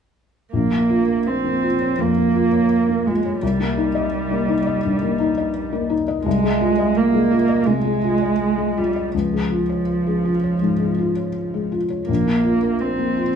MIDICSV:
0, 0, Header, 1, 3, 480
1, 0, Start_track
1, 0, Tempo, 727273
1, 350, Time_signature, 4, 2, 24, 8
1, 1788, Tempo, 708383
1, 5148, Tempo, 734394
1, 8866, End_track
2, 0, Start_track
2, 0, Title_t, "Felt piano"
2, 0, Program_c, 0, 0
2, 350, Note_on_c, 0, 34, 34
2, 453, Control_c, 0, 64, 127
2, 473, Note_on_c, 0, 58, 27
2, 589, Note_on_c, 0, 65, 30
2, 666, Note_off_c, 0, 58, 0
2, 712, Note_on_c, 0, 70, 30
2, 784, Note_off_c, 0, 65, 0
2, 953, Note_on_c, 0, 58, 27
2, 1075, Note_on_c, 0, 65, 27
2, 1097, Note_off_c, 0, 70, 0
2, 1144, Note_off_c, 0, 58, 0
2, 1195, Note_on_c, 0, 73, 27
2, 1265, Note_off_c, 0, 65, 0
2, 1285, Note_off_c, 0, 34, 0
2, 1308, Note_on_c, 0, 41, 26
2, 1384, Note_off_c, 0, 73, 0
2, 1435, Note_on_c, 0, 58, 28
2, 1500, Note_off_c, 0, 41, 0
2, 1550, Note_on_c, 0, 65, 34
2, 1623, Note_off_c, 0, 58, 0
2, 1665, Note_on_c, 0, 73, 30
2, 1740, Note_off_c, 0, 65, 0
2, 1909, Note_on_c, 0, 58, 30
2, 2035, Note_on_c, 0, 65, 35
2, 2053, Note_off_c, 0, 73, 0
2, 2103, Note_off_c, 0, 58, 0
2, 2157, Note_on_c, 0, 73, 33
2, 2225, Note_off_c, 0, 65, 0
2, 2273, Note_off_c, 0, 73, 0
2, 2275, Note_on_c, 0, 36, 43
2, 2283, Control_c, 0, 64, 0
2, 2382, Control_c, 0, 64, 127
2, 2389, Note_on_c, 0, 58, 34
2, 2507, Note_on_c, 0, 63, 35
2, 2579, Note_off_c, 0, 58, 0
2, 2628, Note_on_c, 0, 75, 39
2, 2698, Note_off_c, 0, 63, 0
2, 2871, Note_on_c, 0, 58, 34
2, 2990, Note_on_c, 0, 63, 34
2, 3012, Note_off_c, 0, 75, 0
2, 3062, Note_off_c, 0, 58, 0
2, 3113, Note_on_c, 0, 75, 38
2, 3183, Note_off_c, 0, 63, 0
2, 3204, Note_off_c, 0, 36, 0
2, 3238, Note_on_c, 0, 43, 33
2, 3304, Note_off_c, 0, 75, 0
2, 3353, Note_on_c, 0, 58, 40
2, 3427, Note_off_c, 0, 43, 0
2, 3475, Note_on_c, 0, 63, 41
2, 3544, Note_off_c, 0, 58, 0
2, 3595, Note_on_c, 0, 75, 37
2, 3666, Note_off_c, 0, 63, 0
2, 3832, Note_on_c, 0, 58, 36
2, 3948, Note_on_c, 0, 63, 40
2, 3978, Note_off_c, 0, 75, 0
2, 4024, Note_off_c, 0, 58, 0
2, 4072, Note_on_c, 0, 75, 38
2, 4141, Note_off_c, 0, 63, 0
2, 4191, Note_off_c, 0, 75, 0
2, 4193, Note_on_c, 0, 36, 51
2, 4205, Control_c, 0, 64, 0
2, 4312, Note_on_c, 0, 56, 37
2, 4314, Control_c, 0, 64, 127
2, 4430, Note_on_c, 0, 65, 42
2, 4501, Note_off_c, 0, 56, 0
2, 4550, Note_on_c, 0, 75, 42
2, 4620, Note_off_c, 0, 65, 0
2, 4789, Note_on_c, 0, 56, 35
2, 4907, Note_on_c, 0, 65, 36
2, 4931, Note_off_c, 0, 75, 0
2, 4979, Note_off_c, 0, 56, 0
2, 5027, Note_on_c, 0, 75, 34
2, 5099, Note_off_c, 0, 65, 0
2, 5121, Note_off_c, 0, 36, 0
2, 5151, Note_on_c, 0, 48, 34
2, 5218, Note_off_c, 0, 75, 0
2, 5267, Note_on_c, 0, 56, 35
2, 5337, Note_off_c, 0, 48, 0
2, 5389, Note_on_c, 0, 65, 34
2, 5455, Note_off_c, 0, 56, 0
2, 5510, Note_on_c, 0, 75, 30
2, 5577, Note_off_c, 0, 65, 0
2, 5745, Note_on_c, 0, 56, 31
2, 5869, Note_on_c, 0, 65, 32
2, 5891, Note_off_c, 0, 75, 0
2, 5937, Note_off_c, 0, 56, 0
2, 5993, Note_on_c, 0, 75, 29
2, 6060, Note_off_c, 0, 65, 0
2, 6109, Note_off_c, 0, 75, 0
2, 6113, Note_on_c, 0, 37, 36
2, 6118, Control_c, 0, 64, 0
2, 6237, Note_on_c, 0, 56, 25
2, 6248, Control_c, 0, 64, 127
2, 6347, Note_on_c, 0, 65, 31
2, 6425, Note_off_c, 0, 56, 0
2, 6472, Note_on_c, 0, 73, 28
2, 6541, Note_off_c, 0, 65, 0
2, 6716, Note_on_c, 0, 56, 25
2, 6836, Note_on_c, 0, 65, 27
2, 6858, Note_off_c, 0, 73, 0
2, 6908, Note_off_c, 0, 56, 0
2, 6957, Note_on_c, 0, 73, 27
2, 7028, Note_off_c, 0, 65, 0
2, 7053, Note_off_c, 0, 37, 0
2, 7077, Note_on_c, 0, 44, 24
2, 7149, Note_off_c, 0, 73, 0
2, 7192, Note_on_c, 0, 56, 28
2, 7269, Note_off_c, 0, 44, 0
2, 7316, Note_on_c, 0, 65, 28
2, 7387, Note_off_c, 0, 56, 0
2, 7433, Note_on_c, 0, 73, 24
2, 7508, Note_off_c, 0, 65, 0
2, 7678, Note_on_c, 0, 56, 25
2, 7796, Note_on_c, 0, 65, 28
2, 7821, Note_off_c, 0, 73, 0
2, 7871, Note_off_c, 0, 56, 0
2, 7915, Note_on_c, 0, 73, 27
2, 7989, Note_off_c, 0, 65, 0
2, 8036, Note_off_c, 0, 73, 0
2, 8036, Note_on_c, 0, 34, 36
2, 8050, Control_c, 0, 64, 0
2, 8148, Control_c, 0, 64, 127
2, 8153, Note_on_c, 0, 58, 27
2, 8272, Note_on_c, 0, 65, 31
2, 8345, Note_off_c, 0, 58, 0
2, 8390, Note_on_c, 0, 70, 32
2, 8463, Note_off_c, 0, 65, 0
2, 8620, Note_on_c, 0, 58, 27
2, 8743, Note_on_c, 0, 65, 28
2, 8771, Note_off_c, 0, 70, 0
2, 8814, Note_off_c, 0, 58, 0
2, 8866, Note_off_c, 0, 34, 0
2, 8866, Note_off_c, 0, 65, 0
2, 8866, End_track
3, 0, Start_track
3, 0, Title_t, "Cello"
3, 0, Program_c, 1, 42
3, 354, Note_on_c, 1, 58, 49
3, 839, Note_on_c, 1, 60, 48
3, 849, Note_off_c, 1, 58, 0
3, 1319, Note_on_c, 1, 58, 59
3, 1329, Note_off_c, 1, 60, 0
3, 2028, Note_on_c, 1, 56, 50
3, 2038, Note_off_c, 1, 58, 0
3, 2261, Note_off_c, 1, 56, 0
3, 2265, Note_on_c, 1, 55, 55
3, 3922, Note_off_c, 1, 55, 0
3, 4184, Note_on_c, 1, 56, 66
3, 4673, Note_on_c, 1, 58, 61
3, 4684, Note_off_c, 1, 56, 0
3, 5144, Note_on_c, 1, 56, 61
3, 5154, Note_off_c, 1, 58, 0
3, 5872, Note_on_c, 1, 55, 49
3, 5882, Note_off_c, 1, 56, 0
3, 6110, Note_on_c, 1, 53, 47
3, 6119, Note_off_c, 1, 55, 0
3, 7801, Note_off_c, 1, 53, 0
3, 8028, Note_on_c, 1, 58, 48
3, 8504, Note_on_c, 1, 60, 45
3, 8514, Note_off_c, 1, 58, 0
3, 8866, Note_off_c, 1, 60, 0
3, 8866, End_track
0, 0, End_of_file